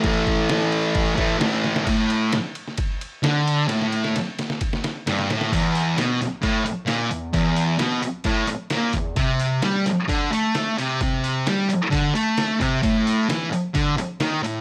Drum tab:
CC |x-x-x-x-x-x-x---|x---------------|----------------|x---------------|
RD |----------------|x-x-x-x-x-x-x-x-|x-x-x-x-x-x-x-x-|----------------|
HH |----------------|----------------|----------------|o-o-o-o-o-o-o-o-|
SD |----o-----o-o-oo|----o--o----o---|oo-oo-oo-oo-oooo|----o-o-----o---|
BD |o-o-----o-o-----|o-------o-------|--------o-------|o-------o-------|

CC |----------------|----------------|----------------|----------------|
RD |----------------|----------------|----------------|----------------|
HH |o-o-o-o-o-o-o-o-|o-o-o-o-o-o-o-o-|o-o-o-o-o-o-o-o-|o-o-o-o-o-o-o-o-|
SD |----o-------o---|----ooo-----o---|----o-------o---|----o-------o---|
BD |o-------o-----o-|o-------o-------|o-------o-----o-|o-------o-------|